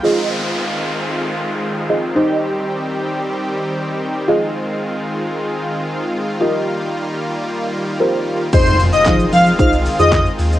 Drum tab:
CC |----------------|----------------|----------------|----------------|
HH |----------------|----------------|----------------|----------------|
SH |----------------|----------------|----------------|----------------|
CP |----------------|----------------|----------------|----------------|
SD |----------------|----------------|----------------|----------------|
BD |----------------|----------------|----------------|----------------|

CC |x---------------|
HH |x-o-x-o-x-o-x-o-|
SH |xxxxxxxxxxxxxxxx|
CP |----x-------x---|
SD |----o-------o---|
BD |o---o---o---o---|